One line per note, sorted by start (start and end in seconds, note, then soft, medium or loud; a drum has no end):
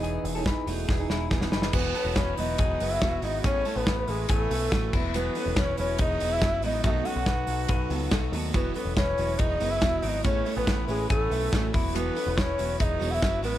0.00 0.17 E1 medium
0.00 0.39 E3 medium
0.00 0.67 B3 medium
0.00 0.34 B3 medium
0.00 0.35 D#4 medium
0.00 0.37 E4 medium
0.00 0.34 G#4 medium
0.00 0.33 G#4 medium
0.00 0.24 D#5 medium
0.04 closed hi-hat medium
0.23 0.50 E1 loud
0.23 open hi-hat medium
0.35 0.46 C#4 medium
0.35 0.68 D#4 medium
0.35 0.67 E4 soft
0.35 0.67 G#4 medium
0.35 0.45 A4 medium
0.46 0.66 D#4 medium
0.46 0.67 B4 medium
0.46 kick loud
0.46 snare loud
0.66 0.84 E1 medium
0.66 0.89 A3 medium
0.66 0.99 B3 medium
0.66 0.99 D#4 medium
0.66 1.00 E4 medium
0.66 0.88 F#4 medium
0.66 0.98 G#4 medium
0.66 open hi-hat medium
0.88 1.06 E1 loud
0.88 1.10 B3 medium
0.88 1.09 G#4 medium
0.88 kick loud
0.88 snare medium
0.99 1.30 D#4 medium
0.99 1.30 E4 medium
0.99 1.31 G#4 medium
1.09 1.27 E1 medium
1.09 1.32 G#3 medium
1.09 1.30 E4 medium
1.09 snare medium
1.30 1.49 E1 medium
1.30 1.73 E3 medium
1.30 1.74 B3 medium
1.30 1.52 B3 medium
1.30 1.74 D#4 medium
1.30 1.74 E4 medium
1.30 1.52 G#4 medium
1.30 1.74 G#4 loud
1.30 kick loud
1.30 snare medium
1.41 snare medium
1.51 1.69 F#1 medium
1.51 1.73 D#4 medium
1.51 1.74 B4 medium
1.51 snare loud
1.62 snare medium
1.73 1.91 E1 loud
1.73 1.95 E3 medium
1.73 1.94 F#3 medium
1.73 2.18 B3 medium
1.73 1.95 B3 medium
1.73 1.95 F#4 loud
1.73 1.95 F#4 medium
1.73 2.18 B4 medium
1.73 1.96 B4 medium
1.73 kick loud
1.73 crash loud
1.95 2.37 F#3 medium
1.95 2.39 B3 medium
1.95 2.17 C#4 medium
1.95 2.38 F#4 medium
1.95 2.16 A4 medium
1.95 2.40 B4 medium
1.95 open hi-hat medium
2.05 2.14 E1 medium
2.16 2.34 E1 loud
2.16 2.36 C#4 medium
2.16 2.57 E4 medium
2.16 2.56 B4 medium
2.16 2.38 C#5 medium
2.16 kick loud
2.16 snare loud
2.16 hi-hat pedal medium
2.16 ride medium
2.37 2.55 E1 loud
2.37 2.79 F#3 medium
2.37 2.81 B3 medium
2.37 2.91 D#4 medium
2.37 2.80 F#4 medium
2.37 2.82 B4 medium
2.37 2.93 D#5 medium
2.37 open hi-hat medium
2.58 2.76 E1 medium
2.58 3.00 B3 medium
2.58 2.99 G#4 medium
2.58 kick loud
2.58 hi-hat pedal medium
2.58 ride medium
2.80 2.98 F#1 medium
2.80 3.01 F#3 medium
2.80 3.01 B3 medium
2.80 3.02 F#4 medium
2.80 3.03 B4 medium
2.80 open hi-hat medium
2.90 3.21 E4 medium
2.90 3.23 E5 loud
3.02 3.19 E1 medium
3.02 3.21 F#3 medium
3.02 3.22 B3 medium
3.02 3.23 B3 medium
3.02 3.23 F#4 medium
3.02 3.23 B4 medium
3.02 kick loud
3.02 snare loud
3.02 ride medium
3.21 3.40 G#1 medium
3.21 3.44 F#3 medium
3.21 3.45 G#3 medium
3.21 3.44 B3 medium
3.21 3.42 D#4 medium
3.21 3.44 E4 medium
3.21 3.45 F#4 medium
3.21 3.45 B4 medium
3.21 3.43 D#5 medium
3.21 open hi-hat medium
3.43 3.62 A1 loud
3.43 3.64 A3 medium
3.43 3.66 B3 medium
3.43 3.77 C#4 medium
3.43 3.65 C#4 medium
3.43 3.66 E4 medium
3.43 3.65 G#4 loud
3.43 3.66 B4 medium
3.43 3.78 C#5 loud
3.43 kick loud
3.43 hi-hat pedal medium
3.43 ride medium
3.65 4.06 A3 medium
3.65 4.07 C#4 medium
3.65 3.87 C#4 medium
3.65 4.09 E4 medium
3.65 3.87 A4 medium
3.65 4.10 B4 medium
3.65 open hi-hat medium
3.76 3.85 A1 medium
3.76 4.10 B3 medium
3.76 4.11 B4 medium
3.87 4.04 A1 loud
3.87 4.28 E4 medium
3.87 4.27 B4 medium
3.87 kick loud
3.87 snare loud
3.87 hi-hat pedal medium
3.87 ride medium
4.08 4.25 A1 loud
4.08 4.32 G#3 medium
4.08 4.50 A3 medium
4.08 4.50 C#4 medium
4.08 4.52 E4 medium
4.08 4.33 G#4 medium
4.08 4.53 B4 medium
4.08 open hi-hat medium
4.29 4.47 A1 loud
4.29 4.94 A3 medium
4.29 4.70 B3 medium
4.29 4.95 A4 medium
4.29 4.69 G#5 medium
4.29 kick loud
4.29 hi-hat pedal medium
4.29 ride medium
4.50 4.68 B1 medium
4.50 4.71 A3 medium
4.50 4.72 C#4 medium
4.50 4.73 E4 medium
4.50 4.73 B4 medium
4.50 open hi-hat medium
4.72 4.90 A1 medium
4.72 4.92 A3 medium
4.72 4.94 A3 medium
4.72 4.94 C#4 medium
4.72 4.93 E4 medium
4.72 4.93 F#4 medium
4.72 4.94 B4 medium
4.72 kick loud
4.72 snare loud
4.72 ride medium
4.93 5.28 E1 medium
4.93 5.14 F#3 medium
4.93 5.14 B3 medium
4.93 5.15 E4 medium
4.93 5.14 E4 medium
4.93 5.14 B4 medium
4.93 kick loud
4.93 crash medium
5.14 5.36 E3 medium
5.14 5.34 F#3 medium
5.14 5.59 B3 medium
5.14 5.35 B3 medium
5.14 5.36 B3 medium
5.14 5.36 E4 medium
5.14 5.36 F#4 loud
5.14 5.59 B4 loud
5.14 5.36 B4 loud
5.14 hi-hat pedal medium
5.14 ride medium
5.35 5.77 F#3 medium
5.35 5.78 B3 medium
5.35 5.58 C#4 medium
5.35 5.78 E4 medium
5.35 5.57 A4 medium
5.35 5.80 B4 medium
5.35 open hi-hat medium
5.46 5.55 E1 loud
5.56 5.74 E1 loud
5.56 5.78 C#4 medium
5.56 5.98 E4 medium
5.56 5.97 B4 medium
5.56 5.78 C#5 loud
5.56 kick loud
5.56 snare loud
5.56 hi-hat pedal medium
5.56 ride medium
5.77 5.96 E1 loud
5.77 6.20 F#3 medium
5.77 6.21 B3 medium
5.77 5.99 C#4 medium
5.77 6.21 E4 medium
5.77 6.22 B4 medium
5.77 5.99 C#5 loud
5.77 open hi-hat medium
5.98 6.17 E1 medium
5.98 6.40 B3 medium
5.98 6.34 D#4 medium
5.98 6.40 G#4 medium
5.98 6.34 D#5 loud
5.98 kick loud
5.98 hi-hat pedal medium
5.98 ride medium
6.20 6.38 E1 medium
6.20 6.41 F#3 medium
6.20 6.42 B3 medium
6.20 6.42 E4 medium
6.20 6.43 B4 medium
6.20 open hi-hat medium
6.32 6.64 E4 loud
6.32 6.64 E5 loud
6.42 6.63 F#1 medium
6.42 6.62 F#3 medium
6.42 6.64 B3 medium
6.42 6.63 B3 medium
6.42 6.64 E4 medium
6.42 6.63 F#4 medium
6.42 6.64 B4 medium
6.42 kick loud
6.42 snare loud
6.42 hi-hat pedal medium
6.42 ride medium
6.62 6.80 A1 medium
6.62 6.83 F#3 medium
6.62 6.84 G#3 medium
6.62 6.84 B3 medium
6.62 6.84 D#4 medium
6.62 6.85 E4 medium
6.62 6.85 B4 medium
6.62 6.84 D#5 loud
6.62 open hi-hat medium
6.84 7.02 B1 loud
6.84 7.06 B2 medium
6.84 7.06 D#3 medium
6.84 7.04 F#3 medium
6.84 7.06 A3 medium
6.84 7.05 B3 medium
6.84 7.08 D#4 medium
6.84 7.05 F#4 loud
6.84 7.05 F#4 medium
6.84 7.06 A4 medium
6.84 6.91 E5 medium
6.84 kick loud
6.84 hi-hat pedal medium
6.84 ride medium
6.90 7.07 D#5 loud
7.05 7.47 F#3 medium
7.05 7.48 B3 medium
7.05 7.27 C#4 medium
7.05 7.91 F#4 medium
7.05 7.49 F#4 medium
7.05 7.27 A4 medium
7.05 7.49 A4 medium
7.05 7.91 F#5 medium
7.05 open hi-hat medium
7.16 7.25 B1 loud
7.26 7.44 B1 loud
7.26 7.67 D#4 medium
7.26 7.67 B4 medium
7.26 kick loud
7.26 snare loud
7.26 hi-hat pedal medium
7.26 ride medium
7.47 7.65 B1 loud
7.47 7.90 F#3 medium
7.47 7.90 B3 medium
7.47 7.91 F#4 medium
7.47 7.91 A4 medium
7.47 open hi-hat medium
7.68 7.87 B1 loud
7.68 8.10 D#4 medium
7.68 8.10 B4 medium
7.68 kick loud
7.68 hi-hat pedal medium
7.68 ride medium
7.90 8.08 C#2 medium
7.90 8.10 F#3 medium
7.90 8.11 B3 medium
7.90 8.11 F#4 medium
7.90 8.12 A4 medium
7.90 open hi-hat medium
8.11 8.29 B1 medium
8.11 8.32 F#3 medium
8.11 8.32 B3 medium
8.11 8.34 D#4 medium
8.11 8.33 F#4 medium
8.11 8.32 A4 medium
8.11 8.33 A4 medium
8.11 kick loud
8.11 snare loud
8.11 ride medium
8.32 8.50 D#2 medium
8.32 8.52 F#3 medium
8.32 8.55 A3 medium
8.32 8.53 B3 medium
8.32 8.53 F#4 medium
8.32 8.54 F#4 medium
8.32 8.55 A4 medium
8.32 open hi-hat medium
8.53 8.72 E1 loud
8.53 8.75 E3 medium
8.53 8.73 F#3 medium
8.53 8.74 B3 medium
8.53 8.76 B3 medium
8.53 8.75 E4 medium
8.53 8.75 F#4 loud
8.53 8.75 B4 medium
8.53 kick loud
8.53 ride medium
8.74 9.16 F#3 medium
8.74 8.95 B3 medium
8.74 9.18 B3 medium
8.74 8.98 C#4 medium
8.74 9.18 E4 medium
8.74 8.97 A4 medium
8.74 8.96 B4 medium
8.74 9.19 B4 medium
8.74 open hi-hat medium
8.85 8.95 E1 medium
8.96 9.14 E1 loud
8.96 9.40 C#4 medium
8.96 9.38 E4 medium
8.96 9.37 B4 medium
8.96 9.41 C#5 loud
8.96 kick loud
8.96 snare loud
8.96 hi-hat pedal medium
8.96 ride medium
9.18 9.36 E1 loud
9.18 9.59 F#3 medium
9.18 9.60 B3 medium
9.18 9.61 E4 medium
9.18 9.62 B4 medium
9.18 open hi-hat medium
9.38 9.57 E1 medium
9.38 9.80 B3 medium
9.38 9.72 D#4 medium
9.38 9.79 G#4 medium
9.38 9.73 D#5 loud
9.38 kick loud
9.38 hi-hat pedal medium
9.38 ride medium
9.60 9.78 F#1 medium
9.60 9.80 F#3 medium
9.60 9.81 B3 medium
9.60 9.82 E4 medium
9.60 9.83 B4 medium
9.60 open hi-hat medium
9.70 10.04 E4 loud
9.70 10.03 E5 loud
9.81 10.00 E1 loud
9.81 10.01 F#3 medium
9.81 10.02 B3 medium
9.81 10.04 B3 medium
9.81 10.03 E4 medium
9.81 10.04 F#4 medium
9.81 10.03 B4 medium
9.81 kick loud
9.81 snare loud
9.81 hi-hat pedal medium
9.81 ride medium
10.02 10.21 G#1 medium
10.02 10.24 F#3 medium
10.02 10.25 G#3 medium
10.02 10.24 B3 medium
10.02 10.23 D#4 medium
10.02 10.25 E4 medium
10.02 10.24 E4 medium
10.02 10.24 B4 medium
10.02 10.09 E5 loud
10.02 open hi-hat medium
10.08 10.25 D#5 loud
10.24 10.42 A1 loud
10.24 10.44 A3 medium
10.24 10.47 B3 medium
10.24 10.54 C#4 medium
10.24 10.45 C#4 medium
10.24 10.46 E4 medium
10.24 10.46 G#4 loud
10.24 10.47 B4 medium
10.24 10.55 C#5 loud
10.24 kick loud
10.24 hi-hat pedal medium
10.24 ride medium
10.45 10.87 A3 medium
10.45 10.87 C#4 medium
10.45 10.68 C#4 medium
10.45 10.89 E4 medium
10.45 10.68 A4 medium
10.45 10.90 B4 medium
10.45 open hi-hat medium
10.56 10.66 A1 medium
10.56 10.86 B3 medium
10.56 10.87 B4 loud
10.67 10.85 A1 loud
10.67 11.08 E4 medium
10.67 11.08 B4 medium
10.67 kick loud
10.67 snare loud
10.67 hi-hat pedal medium
10.67 ride medium
10.87 11.06 A1 loud
10.87 11.08 G#3 medium
10.87 11.30 A3 medium
10.87 11.30 C#4 medium
10.87 11.32 E4 medium
10.87 11.09 G#4 medium
10.87 11.32 B4 medium
10.87 open hi-hat medium
11.09 11.28 A1 medium
11.09 11.69 A3 medium
11.09 11.50 B3 medium
11.09 11.70 A4 medium
11.09 11.50 G#5 medium
11.09 kick loud
11.09 hi-hat pedal medium
11.09 ride medium
11.30 11.48 B1 medium
11.30 11.51 A3 medium
11.30 11.52 C#4 medium
11.30 11.53 E4 medium
11.30 11.53 B4 medium
11.30 open hi-hat medium
11.52 11.70 A1 medium
11.52 11.73 A3 medium
11.52 11.74 A3 medium
11.52 11.74 C#4 medium
11.52 11.73 E4 medium
11.52 11.74 F#4 medium
11.52 11.74 B4 medium
11.52 kick loud
11.52 snare loud
11.52 hi-hat pedal medium
11.52 ride medium
11.73 12.09 E1 loud
11.73 11.94 F#3 medium
11.73 11.94 B3 medium
11.73 11.95 E4 medium
11.73 11.95 B4 medium
11.73 kick loud
11.73 open hi-hat medium
11.95 12.16 E3 medium
11.95 12.14 F#3 medium
11.95 12.39 B3 medium
11.95 12.16 B3 medium
11.95 12.15 B3 medium
11.95 12.16 E4 loud
11.95 12.16 F#4 loud
11.95 12.17 B4 medium
11.95 12.40 B4 medium
11.95 hi-hat pedal medium
11.95 ride medium
12.15 12.58 F#3 medium
12.15 12.59 B3 medium
12.15 12.38 C#4 medium
12.15 12.58 E4 medium
12.15 12.37 A4 medium
12.15 12.60 B4 medium
12.15 open hi-hat medium
12.26 12.35 E1 loud
12.37 12.79 C#4 medium
12.37 12.78 E4 medium
12.37 12.77 B4 medium
12.37 12.79 C#5 loud
12.37 kick loud
12.37 snare loud
12.37 hi-hat pedal medium
12.37 ride medium
12.58 12.76 E1 loud
12.58 12.99 F#3 medium
12.58 13.00 B3 medium
12.58 13.00 E4 medium
12.58 13.02 B4 medium
12.58 open hi-hat medium
12.79 12.97 E1 loud
12.79 13.20 B3 medium
12.79 13.13 D#4 medium
12.79 13.20 G#4 medium
12.79 12.85 E5 medium
12.79 kick loud
12.79 hi-hat pedal medium
12.79 ride medium
12.84 13.12 D#5 medium
13.00 13.18 E1 medium
13.00 13.21 F#3 medium
13.00 13.22 B3 medium
13.00 13.22 E4 medium
13.00 13.23 B4 medium
13.00 open hi-hat medium
13.11 13.44 E4 loud
13.11 13.43 E5 medium
13.11 13.15 F#5 medium
13.22 13.43 F#1 medium
13.22 13.41 F#3 medium
13.22 13.43 B3 medium
13.22 13.44 B3 medium
13.22 13.43 E4 medium
13.22 13.43 F#4 medium
13.22 13.43 B4 medium
13.22 kick loud
13.22 snare loud
13.22 hi-hat pedal medium
13.22 ride medium
13.43 13.58 A1 medium
13.43 13.58 F#3 medium
13.43 13.58 G#3 medium
13.43 13.58 B3 medium
13.43 13.58 E4 medium
13.43 13.55 A#4 loud
13.43 13.58 B4 medium
13.43 open hi-hat medium
13.55 13.58 B4 loud